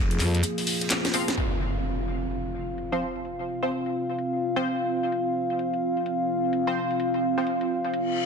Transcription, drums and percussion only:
0.11 closed hi-hat medium
0.11 closed hi-hat soft
0.20 clap medium
0.20 closed hi-hat medium
0.20 open hi-hat loud
0.34 snare medium
0.34 closed hi-hat soft
0.43 closed hi-hat medium
0.58 snare soft
0.58 open hi-hat medium
0.67 open hi-hat medium
0.67 open hi-hat loud
0.81 snare soft
0.81 closed hi-hat soft
0.90 snare medium
0.90 snare loud
0.90 clap loud
0.90 closed hi-hat medium
1.05 snare medium
1.05 snare loud
1.05 closed hi-hat medium
1.05 closed hi-hat soft
1.13 snare loud
1.13 closed hi-hat medium
1.13 open hi-hat loud
1.28 snare medium
1.28 snare loud
1.28 closed hi-hat medium
1.75 closed hi-hat soft
1.84 closed hi-hat medium
1.99 closed hi-hat soft
2.22 closed hi-hat soft
2.31 closed hi-hat medium
2.78 closed hi-hat medium
3.16 closed hi-hat soft
3.25 closed hi-hat medium
3.63 closed hi-hat soft
3.72 closed hi-hat medium
3.86 closed hi-hat soft
4.10 closed hi-hat soft
4.19 closed hi-hat medium
4.65 closed hi-hat medium
5.03 closed hi-hat soft
5.12 closed hi-hat medium
5.50 closed hi-hat soft
5.59 closed hi-hat medium
5.74 closed hi-hat soft
5.97 closed hi-hat soft
6.06 closed hi-hat medium
6.53 closed hi-hat medium
6.91 closed hi-hat soft
7.00 closed hi-hat medium
7.14 closed hi-hat soft
7.38 closed hi-hat soft
7.47 closed hi-hat medium
7.61 closed hi-hat soft
7.84 closed hi-hat soft
7.94 closed hi-hat medium

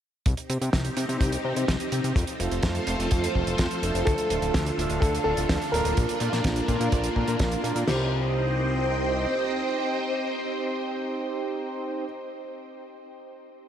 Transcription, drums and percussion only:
0.26 kick loud
0.26 closed hi-hat medium
0.37 closed hi-hat medium
0.50 closed hi-hat medium
0.62 closed hi-hat medium
0.73 kick loud
0.73 snare loud
0.73 closed hi-hat medium
0.84 closed hi-hat medium
0.97 closed hi-hat medium
1.09 closed hi-hat soft
1.21 kick loud
1.21 closed hi-hat medium
1.32 closed hi-hat medium
1.56 closed hi-hat medium
1.68 kick loud
1.68 snare loud
1.68 closed hi-hat medium
1.80 closed hi-hat medium
1.92 closed hi-hat medium
2.04 closed hi-hat medium
2.16 kick loud
2.16 closed hi-hat medium
2.27 closed hi-hat medium
2.40 closed hi-hat medium
2.52 closed hi-hat soft
2.63 kick loud
2.63 snare loud
2.63 closed hi-hat medium
2.75 closed hi-hat soft
2.87 closed hi-hat medium
3.00 closed hi-hat soft
3.11 kick loud
3.11 closed hi-hat medium
3.24 closed hi-hat medium
3.35 kick medium
3.47 closed hi-hat soft
3.58 kick loud
3.58 snare loud
3.58 closed hi-hat medium
3.71 closed hi-hat medium
3.83 closed hi-hat medium
3.95 closed hi-hat soft
4.07 kick loud
4.07 closed hi-hat medium
4.18 closed hi-hat medium
4.30 closed hi-hat medium
4.42 closed hi-hat medium
4.54 kick loud
4.54 snare loud
4.54 closed hi-hat loud
4.66 closed hi-hat medium
4.79 closed hi-hat medium
4.90 closed hi-hat soft
5.02 kick loud
5.02 closed hi-hat medium
5.15 closed hi-hat medium
5.37 closed hi-hat medium
5.49 kick loud
5.49 snare loud
5.49 closed hi-hat medium
5.62 closed hi-hat soft
5.74 closed hi-hat medium
5.85 closed hi-hat medium
5.97 kick loud
5.97 closed hi-hat medium
6.09 closed hi-hat medium
6.20 closed hi-hat medium
6.33 snare soft
6.33 closed hi-hat soft
6.44 kick loud
6.44 snare loud
6.44 closed hi-hat medium
6.56 closed hi-hat medium
6.68 kick medium
6.68 closed hi-hat medium
6.81 closed hi-hat medium
6.92 kick loud
6.92 closed hi-hat medium
7.04 closed hi-hat medium
7.16 kick medium
7.28 closed hi-hat medium
7.39 kick loud
7.39 snare loud
7.39 closed hi-hat medium
7.52 closed hi-hat medium
7.64 closed hi-hat medium
7.76 closed hi-hat medium
7.88 snare loud
7.88 crash medium

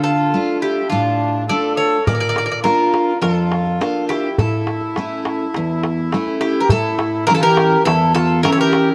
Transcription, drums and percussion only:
2.07 darbuka dum medium
2.36 darbuka tek medium
2.65 darbuka tek medium
2.94 darbuka tek medium
3.22 darbuka tek medium
3.51 darbuka tek medium
3.66 darbuka tek soft
3.81 darbuka tek medium
4.10 darbuka tek medium
4.39 darbuka dum medium
4.53 darbuka tek soft
4.67 darbuka tek medium
4.81 darbuka tek soft
4.96 darbuka tek medium
5.25 darbuka tek medium
5.54 darbuka tek medium
5.83 darbuka tek medium
5.98 darbuka tek soft
6.12 darbuka tek medium
6.27 darbuka tek soft
6.41 darbuka tek medium
6.69 darbuka dum medium
6.99 darbuka tek medium
7.28 darbuka tek medium
7.57 darbuka tek medium
7.72 darbuka tek soft
7.87 darbuka tek medium
8.01 darbuka tek soft
8.16 darbuka tek medium
8.45 darbuka tek medium
8.73 darbuka tek medium

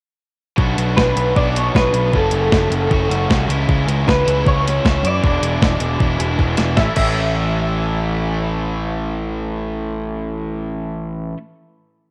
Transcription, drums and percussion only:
0.58 kick loud
0.78 closed hi-hat medium
0.97 kick loud
0.97 snare loud
1.17 closed hi-hat medium
1.36 kick loud
1.56 closed hi-hat medium
1.75 kick loud
1.75 snare loud
1.94 closed hi-hat medium
2.13 kick loud
2.31 closed hi-hat medium
2.52 kick loud
2.52 snare loud
2.72 closed hi-hat medium
2.91 kick loud
3.11 snare soft
3.11 closed hi-hat medium
3.30 kick loud
3.30 snare loud
3.50 closed hi-hat medium
3.69 kick loud
3.88 closed hi-hat medium
4.08 kick loud
4.08 snare loud
4.28 closed hi-hat medium
4.47 kick loud
4.68 snare soft
4.68 closed hi-hat medium
4.85 kick loud
4.85 snare loud
5.05 closed hi-hat medium
5.24 kick loud
5.43 closed hi-hat loud
5.62 kick loud
5.62 snare loud
5.80 closed hi-hat medium
6.00 kick loud
6.20 closed hi-hat medium
6.39 kick loud
6.57 snare medium
6.57 closed hi-hat medium
6.77 kick loud
6.77 snare medium
6.96 kick loud
6.96 crash medium

